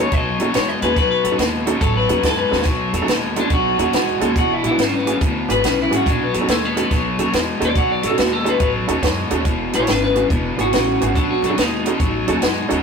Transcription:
Already playing: B2 G#3
0.01 C#5
0.12 B1 B2 F#3 D#5, kick, closed hi-hat
0.39 D#2 B2 F#3 C#4 D#4 F#4 A4, closed hi-hat
0.54 E2 B2 G#3 C#5, snare, closed hi-hat
0.69 D#5
0.81 D#2 B2 G#3 C#4 D#4 F#4 G#4 B4, closed hi-hat
0.96 B1 B2 F#3 B4, kick, closed hi-hat
1.11 B4
1.23 F#2 B2 F#3 F#4 A4, closed hi-hat
1.31 C#4 D#4 F#4 A4
1.38 D#2 B2 G#3, snare, closed hi-hat
1.66 B2 G#3 C#4 D#4 F#4 A4, closed hi-hat
1.81 A1 B2 F#3 A4, kick, closed hi-hat
1.97 B4
2.09 D#2 B2 F#3 C#4 D#4 F#4 A4, closed hi-hat
2.23 F#2 B2 G#3 A4, kick, snare, closed hi-hat
2.38 B4
2.50 D#2 B2 G#3 C#4 D#4 F#4 A4, snare
2.62 B1 B2, kick, snare, closed hi-hat
2.66 F#3
2.93 E2 B2 F#3 F#4 A4, closed hi-hat
3.01 C#4 D#4 F#4 A4
3.08 D#2 B2 G#3, snare, closed hi-hat
3.36 B2 G#3 C#4 D4 D#4 F#4 A4, closed hi-hat
3.50 B1 B2 F#3 F#4, kick, closed hi-hat
3.77 D#2 B2 F#3 C#4 D#4 F#4 A4, closed hi-hat
3.93 E2 B2 G#3, snare, closed hi-hat
4.20 D#2 B2 G#3 C#4 D#4 F#4 A4, closed hi-hat
4.35 E1 E2 B2 F#4, kick, closed hi-hat
4.53 E4
4.63 B1 E2 B2 E4 F#4 G#4, closed hi-hat
4.71 B3 D4 F#4 G#4
4.78 G#1 E2 C#3 D4, snare, closed hi-hat
4.95 B3
5.06 E2 C#3 B3 D4 F#4 G#4, closed hi-hat
5.21 D2 E2 B2, kick, closed hi-hat
5.48 G#1 E2 B2 B3 D4 F#4 G#4 B4, closed hi-hat
5.62 B1 E2 C#3, snare, closed hi-hat
5.82 E4
5.90 G#1 E2 C#3 B3 D4 F#4 G#4, closed hi-hat
5.96 F#4
6.05 B1 B2 F#3 D4, kick, closed hi-hat
6.23 B3
6.33 E2 B2 F#3 F#4 A4, closed hi-hat
6.41 C#4 D#4 F#4 A4
6.48 D#2 B2 G#3 A3, snare, closed hi-hat
6.65 B3
6.76 B2 G#3 C#4 D#4 F#4 A4, closed hi-hat
6.91 B1 B2 F#3, kick, snare, closed hi-hat
7.18 D#2 B2 F#3 C#4 D#4 F#4 A4, closed hi-hat
7.33 E2 B2 G#3, snare, closed hi-hat
7.60 D#2 B2 G#3 C#4 D#4 F#4 A4, closed hi-hat
7.65 D5
7.75 B1 B2 F#3 F#5, kick, closed hi-hat
7.92 D5
8.03 F#2 B2 F#3 F#4 A4, closed hi-hat
8.07 C#4 D#4 F#4 A4
8.18 D#2 B2 G#3 F#4, snare, closed hi-hat
8.33 A4
8.44 B2 G#3 C#4 D#4 F#4 A4 B4, closed hi-hat
8.60 A1 B2 F#3, kick, closed hi-hat
8.88 D#2 B2 F#3 C#4 D#4 F#4 A4, closed hi-hat
9.02 F#2 B2 G#3 C#5, kick, snare, closed hi-hat
9.31 D#2 B2 G#3 C#4 D#4 F#4 A4, closed hi-hat
9.45 E1 E2 B2, kick, closed hi-hat
9.73 A1 E2 B2 E4 F#4 G#4 C#5, closed hi-hat
9.79 B3 D4 F#4 G#4
9.87 G#1 E2 C#3 D4, snare, closed hi-hat
9.91 B4
10.04 B4
10.15 E2 C#3 B3 D4 F#4 G#4, closed hi-hat
10.30 E1 E2 B2, kick, closed hi-hat
10.57 G#1 E2 B2 B3 D4 F#4 G#4, closed hi-hat
10.72 A1 E2 C#3, snare, closed hi-hat
11.01 G#1 E2 C#3 B3 D4 F#4 G#4, closed hi-hat
11.15 B1 B2 F#3 D4, kick, closed hi-hat
11.31 F#4
11.42 F#2 B2 F#3 D4 F#4 A4, closed hi-hat
11.50 C#4 D#4 F#4 A4
11.57 D#2 B2 G#3 D#4, snare, closed hi-hat
11.86 B2 G#3 C#4 D#4 F#4 A4, closed hi-hat
11.99 A1 B2 F#3, kick, closed hi-hat
12.27 D#2 B2 F#3 C#4 D#4 F#4 A4 A5, closed hi-hat
12.35 G#5
12.42 F#2 B2 G#3 F#5, snare, closed hi-hat
12.68 D#2 B2 G#3 C#4 D#4 F#4 A4, closed hi-hat

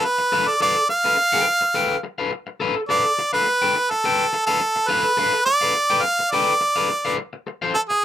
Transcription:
0.04 B4, muted clean electric guitar stroke
0.18 muted clean electric guitar stroke
0.32 A4 B4 F5
0.47 D5, muted clean electric guitar stroke
0.60 A4 B4 D5 F5
0.76 muted clean electric guitar stroke
0.89 F5, muted clean electric guitar stroke
1.04 A4 B4 F5
1.17 muted clean electric guitar stroke
1.32 A4 B4 G5
1.46 muted clean electric guitar stroke
1.61 muted clean electric guitar stroke
1.74 A4 B4 G5
2.03 muted clean electric guitar stroke
2.18 A4 B4 F5
2.32 muted clean electric guitar stroke
2.47 muted clean electric guitar stroke
2.60 A4 B4 F5
2.76 muted clean electric guitar stroke
2.89 A4 B4 D5 F5
3.04 muted clean electric guitar stroke
3.19 muted clean electric guitar stroke
3.33 A4 B4 F5
3.47 muted clean electric guitar stroke
3.62 A4 B4 G5
3.76 muted clean electric guitar stroke
3.90 A4, muted clean electric guitar stroke
4.04 A4 B4 G5
4.33 muted clean electric guitar stroke
4.46 A4 B4 F5
4.60 muted clean electric guitar stroke
4.76 muted clean electric guitar stroke
4.88 A4 B4 F5
5.04 muted clean electric guitar stroke
5.17 A4 B4 F5
5.33 muted clean electric guitar stroke
5.45 D5, muted clean electric guitar stroke
5.61 A4 B4 F5
5.75 muted clean electric guitar stroke
5.90 A4 B4 G5
6.02 F5, muted clean electric guitar stroke
6.19 muted clean electric guitar stroke
6.31 A4 B4 D5 G5
6.61 muted clean electric guitar stroke
6.76 A4 B4 F5
6.89 muted clean electric guitar stroke
7.05 A4 B4 F5
7.18 muted clean electric guitar stroke
7.33 muted clean electric guitar stroke
7.47 muted clean electric guitar stroke
7.62 A4 C5 F5
7.74 A4, muted clean electric guitar stroke
7.89 G#4, muted clean electric guitar stroke

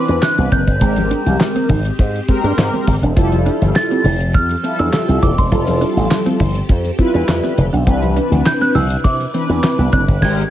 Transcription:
Already playing: C3 E3 C4 D4 B4 D6
0.08 E2 D4, closed hi-hat
0.22 F#6, muted clean electric guitar stroke, snare, clap, muted conga
0.38 C2 B3, closed hi-hat
0.52 F#1 C4 G6, kick, closed hi-hat, low conga
0.67 G1, kick, closed hi-hat
0.81 G#1 G#3 C4 G4 A#4, kick, closed hi-hat, muted conga
0.96 muted clean electric guitar stroke, closed hi-hat, muted conga, high conga
1.11 D4, closed hi-hat
1.26 C2, closed hi-hat, high conga
1.40 muted clean electric guitar stroke, snare, clap, muted conga
1.56 C4, closed hi-hat, muted conga
1.69 G#1 D#4, kick, open hi-hat, high conga, low conga
1.85 closed hi-hat
1.99 G#2, muted clean electric guitar stroke, kick, closed hi-hat
2.16 closed hi-hat
2.28 G#3 C4 G4 A#4, kick, closed hi-hat
2.44 G2 D4, closed hi-hat
2.58 G#2, snare, clap
2.74 C4, closed hi-hat, muted conga
2.87 G#1, muted clean electric guitar stroke, kick, open hi-hat, low conga
3.03 E1 D4, closed hi-hat
3.16 F1 F3 G3 C4 E4 F4 G4 A4, kick, closed hi-hat, muted conga
3.32 muted clean electric guitar stroke, closed hi-hat, high conga
3.46 D4, closed hi-hat
3.62 G1, closed hi-hat, high conga
3.75 A6, muted clean electric guitar stroke, snare, clap, muted conga
3.91 C4, closed hi-hat
4.04 F1 E4, open hi-hat, high conga, low conga
4.20 closed hi-hat
4.33 F2 F6, muted clean electric guitar stroke, kick, closed hi-hat, muted conga
4.49 closed hi-hat, muted conga
4.63 G3 C4 E4 F4 A4, closed hi-hat
4.79 E2 D4 E6, closed hi-hat
4.93 muted clean electric guitar stroke, snare, clap, muted conga
5.08 C2 C4, closed hi-hat
5.22 D#1 E4 D6, kick, closed hi-hat, low conga
5.38 E1 C6, kick, closed hi-hat
5.52 F1 G3 E4 F4 A4, kick, closed hi-hat, muted conga
5.67 muted clean electric guitar stroke, closed hi-hat, muted conga, high conga
5.81 D4, closed hi-hat
5.97 A1, closed hi-hat, high conga
6.11 muted clean electric guitar stroke, snare, clap, muted conga
6.26 C4, closed hi-hat, muted conga
6.40 G1 E4, kick, open hi-hat, high conga, low conga
6.55 closed hi-hat
6.69 F2, muted clean electric guitar stroke, kick, closed hi-hat, muted conga
6.85 closed hi-hat, muted conga
6.98 G3 C4 E4 F4 B4, kick, closed hi-hat
7.14 E2 D4, closed hi-hat
7.28 F2, snare, clap
7.44 C4, closed hi-hat, muted conga
7.57 F1, muted clean electric guitar stroke, closed hi-hat, low conga
7.73 B1 D4, closed hi-hat
7.86 C2 C3 E3 C4 D4 E4 B4, kick, closed hi-hat, muted conga
8.02 muted clean electric guitar stroke, closed hi-hat, high conga
8.16 D4, closed hi-hat
8.31 D2, closed hi-hat, high conga
8.45 G6, muted clean electric guitar stroke, snare, clap
8.61 C4 F#6, closed hi-hat, muted conga
8.75 C2 E4 E6, open hi-hat, high conga, low conga
8.90 closed hi-hat
9.04 C3 D6, muted clean electric guitar stroke, kick, closed hi-hat, muted conga
9.20 closed hi-hat, muted conga
9.34 E3 C4 D4 B4, closed hi-hat
9.49 E2 D4, closed hi-hat
9.64 snare, clap
9.78 C2 B3, closed hi-hat, muted conga
9.92 F#1 C4 F#6, kick, closed hi-hat, low conga
10.08 G1, kick, closed hi-hat
10.22 G#1 G#3 C4 G4 A#4 G#6, kick, snare, crash

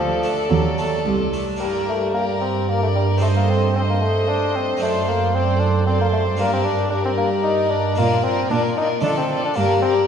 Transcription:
Already playing: D2 F3 A4 D5
0.23 A3 D4
0.49 D#2 F#3
0.78 A3 D4
1.06 C2
1.33 A3 D4
1.56 A#3 D4
1.60 G2 G3 G4 A#4 D5
1.89 A3
2.14 A#3 G4 A#4 D5
2.41 C4
2.68 A#3 G4 A#4 D5
2.83 A3
2.95 G3
3.18 A3 C4 D#4
3.22 A3 A4 C5 D#5
3.36 A#3
3.50 C4
3.75 C4 A4 C5 D#5
3.89 A#3
4.01 A3
4.28 D4
4.56 C4
4.77 A3 C4 D4
4.81 F#2 A3 A4 C5 D5
5.09 A#3
5.34 C4 A4 C5 D5
5.60 D4
5.86 C4 A4 C5 D5
6.01 A#3
6.13 A3
6.37 G2 A#3 D4 G4 A#4 D5
6.53 C4
6.65 D4
6.90 D4 G4 A#4 D5
7.05 C4
7.17 A#3
7.43 D#4
7.71 D4
7.95 A#2 A#3 D4 F4 A#4 D5
8.23 C4 F4 A#4 D5
8.50 A#2 D4 F4 A#4 D5
8.77 D#4 F4 A#4 D5
9.01 D3 A3 D4 F4 A4
9.06 D5
9.17 C4
9.31 F4 A4 D5
9.45 D4
9.54 G2 A#3 D4 G4 A#4
9.59 D5
9.82 C4 G4 A#4 D5

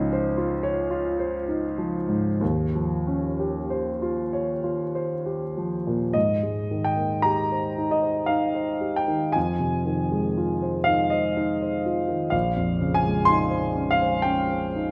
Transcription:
Already playing: C#2 F3 C#4 D#4
0.13 C5
0.37 F4
0.63 C#5
0.91 F4
1.19 C5
1.48 D#4
1.78 F3
2.08 G#2
2.41 D#2
2.75 F3
3.07 C#4
3.40 G4
3.70 C5
4.02 F4
4.33 C#5
4.64 F4
4.95 C5
5.26 G4
5.57 F3
5.87 A#2
6.13 G#2 D#5
6.43 G#3
6.71 D#3
6.84 G5
6.96 A#3
7.22 G4 A#5
7.52 C5
7.78 D#4
7.91 D#5
8.02 C5
8.26 D#4 F5
8.55 C5
8.81 G4
8.96 G5
9.08 D#3
9.32 F2 G#5
9.59 C3
9.86 D#3
10.11 G#3
10.37 F4
10.62 C5
10.84 D#4 F5
11.10 C5 D#5
11.37 D#4
11.62 C5
11.86 F4
12.08 D#3
12.30 A#1 F5
12.56 F2
12.81 C#3
12.94 G#5
13.04 G#3
13.25 D#4 C6
13.50 C5
13.75 C#4
13.91 F5
14.02 C5
14.22 C#4 G5
14.50 C5
14.76 D#4

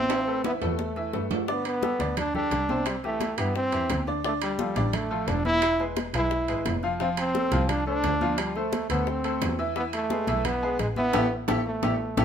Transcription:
Already playing: A1 E3 C4 E4 E5
0.10 high bongo, high conga, high timbale
0.27 A3 A4 B4, high conga
0.44 E3 B3 E4 E5, high bongo, high conga, high timbale
0.61 E2 A3 A4 B4, high bongo, high conga, low timbale
0.79 high bongo, high conga
0.96 E3 E4 E5, high bongo
1.13 G2 A3 A4 B4, high bongo, low bongo, low timbale
1.31 high bongo, low conga, low timbale
1.48 D3 B3 D4 D5, high bongo, high conga
1.65 B3, high bongo, high conga, high timbale
1.83 G3 G4 A4, high bongo, high conga
2.00 D2 D3 D4 D5, high bongo, high conga, high timbale
2.17 D4, high bongo, high conga, low conga, high timbale
2.35 G3 D4 G4 A4, high conga, low conga
2.51 C2, high bongo, low bongo, high conga, high timbale
2.69 C3 C4 C5, high bongo, high conga
2.86 G3, high bongo, high conga, high timbale
3.03 E3 A3 E4 G4, high bongo, high conga
3.21 high bongo, high conga, high timbale
3.38 G2 E3 B3 E4 G4, high bongo, high conga, high timbale
3.55 C4, high bongo, high conga
3.72 E2 E3 E4 G4, high conga, high timbale
3.90 D2, high bongo, low bongo, high conga, high timbale
4.07 D3 D4 D5, high bongo, high conga
4.24 D3 A3 D4 D5, high bongo, high conga
4.42 G3, high bongo, high conga, high timbale
4.59 F3 F4 A4, high bongo, high conga
4.76 A1 D3 D4 D5, high bongo, high conga, high timbale
4.93 A3, high bongo, high conga, low conga, high timbale
5.11 F3 F4 A4, high conga
5.28 E1 D4, high bongo, low bongo, high conga, high timbale, low timbale
5.45 E3 E4 E5, high bongo, high conga
5.62 high bongo, high conga, high timbale
5.80 G#3 G#4 B4, high bongo, high conga
5.97 high bongo, high conga, high timbale
6.14 B1 G#3 E4 G#4 B4, high bongo, high conga, high timbale
6.31 high bongo, high conga
6.48 G#1 G#3 G#4 B4, high conga, high timbale
6.66 F1, high bongo, low bongo, high conga, high timbale, low timbale
6.83 F3 F4 F5, high bongo, high conga
7.00 F3 C4 F4 F5, high bongo, high conga
7.17 C4, high bongo, high conga, high timbale
7.35 A3 A4 C5, high bongo, high conga
7.52 C2 F3 F4 F5, high bongo, high conga, high timbale
7.69 D4, high bongo, high conga, low conga, high timbale
7.86 A3 D4 A4 C5, high conga
8.04 D2, high bongo, low bongo, high conga, high timbale, low timbale
8.21 F3 F4 F5, high bongo, high conga
8.38 G3, high bongo, high timbale
8.55 A3 A4 C5, high bongo, high conga
8.73 high bongo, high conga, high timbale
8.90 D2 A3 B3 A4 C5, high bongo, high conga, high timbale
9.07 C4, high bongo, high conga
9.24 A3 A4 C5, high conga, high timbale
9.41 E2, high bongo, low bongo, high conga, high timbale, low timbale
9.59 E3 E4 E5, high bongo, high conga
9.76 E3 B3 E4 E5, high bongo, high conga
9.93 A3, high bongo, high conga, high timbale
10.10 G#3 G#4 B4, high bongo, high conga
10.27 B1 E3 E4 E5, high bongo, high conga, high timbale
10.45 B3, high bongo, high conga, low conga, high timbale
10.62 G#3 G#4 B4, high conga
10.79 A1 G#3, high bongo, low bongo, high conga, high timbale
10.96 E3 B3 E4 E5, high bongo, high conga
11.13 A1 E4 G4 A4, low bongo, high conga, high timbale
11.48 A1 E4 G4 A4, low bongo, high conga, high timbale
11.66 A3
11.83 A1 E4 G4 A4, low bongo, high conga, high timbale
12.17 A1 E4 G4 A4, low bongo, high conga, high timbale

